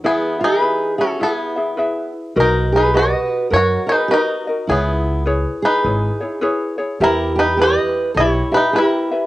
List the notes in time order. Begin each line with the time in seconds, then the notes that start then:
0.04 E2 B3 E4 G#4 B4 E5
0.39 E4 G#4 E5
0.44 D#4 B4
0.61 E4 G#4 B4 E5
0.98 C#4 E4 F#4 G#4 A4 E5
1.19 B1 B3 E4 F4 G#4 B4 E5
1.23 A4
1.32 E4 G#4
1.56 E4 G#4 E5
1.77 E4 G#4 B4 E5
2.36 B1 F#4 A#4 B4 D#5
2.40 D#4 A#4
2.72 G#4 B4
2.77 D#4
2.94 F#4 B4 D#5
2.99 F#4
3.51 F#2 F#4 A#4 B4 C#5 D#5
3.56 F#4
3.87 G#4 A#4 B4 D#5
3.91 D#4 F#4
4.08 F#4 A#4 B4
4.12 D#4 D#5
4.22 A#4
4.47 F#4 A#4 D#5
4.67 C#2 E4 G#4 B4 C#5
4.72 B3
5.26 E4 G#4 B4 C#5
5.62 D#4 G#4 B4
5.84 G#1 E4 G#4 B4 C#5
6.21 E4 G#4 C#5
6.41 E4 G#4 B4 C#5
6.78 E4 G#4 C#5
7.00 E2 E4 G4 A#4 B4 E5
7.35 G4 B4
7.40 D#4
7.57 E4 G4 B4
7.62 G4 D#5
8.14 B1 E4 G4 B4 C#5
8.19 E4 E5
8.52 E4 G4 B4 E5
8.57 D#4
8.73 E4 G4 B4 E5
8.78 E4
8.87 A#4
9.12 E4 B4 E5